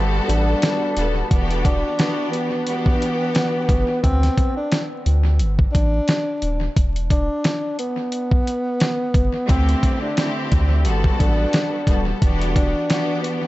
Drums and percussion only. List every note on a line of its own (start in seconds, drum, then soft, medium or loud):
0.29 closed hi-hat medium
0.62 snare loud
0.62 closed hi-hat loud
0.97 closed hi-hat medium
1.31 kick loud
1.31 closed hi-hat loud
1.50 closed hi-hat medium
1.65 kick medium
1.65 closed hi-hat medium
1.99 snare loud
1.99 closed hi-hat loud
2.33 closed hi-hat medium
2.67 closed hi-hat medium
2.86 kick medium
3.02 closed hi-hat medium
3.35 snare loud
3.35 closed hi-hat loud
3.69 kick medium
3.69 closed hi-hat medium
4.04 kick loud
4.04 closed hi-hat loud
4.23 snare soft
4.23 closed hi-hat medium
4.38 kick medium
4.38 closed hi-hat medium
4.72 snare loud
4.72 closed hi-hat loud
5.06 closed hi-hat medium
5.39 closed hi-hat medium
5.59 kick medium
5.75 kick medium
5.75 closed hi-hat medium
6.08 snare loud
6.08 closed hi-hat loud
6.42 closed hi-hat medium
6.76 kick loud
6.76 closed hi-hat loud
6.96 closed hi-hat medium
7.10 kick medium
7.10 closed hi-hat medium
7.44 snare loud
7.44 closed hi-hat loud
7.79 closed hi-hat medium
8.12 closed hi-hat medium
8.31 kick medium
8.47 closed hi-hat medium
8.80 snare loud
8.80 closed hi-hat loud
9.14 kick loud
9.14 closed hi-hat medium
9.49 kick loud
9.49 closed hi-hat loud
9.69 closed hi-hat soft
9.83 kick medium
9.83 closed hi-hat medium
10.17 snare loud
10.17 closed hi-hat loud
10.52 kick loud
10.52 closed hi-hat medium
10.85 closed hi-hat medium
11.04 kick loud
11.20 kick medium
11.20 closed hi-hat medium
11.53 snare loud
11.53 closed hi-hat loud
11.87 kick medium
11.87 closed hi-hat medium
12.22 kick loud
12.22 closed hi-hat loud
12.41 closed hi-hat medium
12.56 kick medium
12.56 closed hi-hat medium
12.90 snare loud
12.90 closed hi-hat loud
13.24 closed hi-hat medium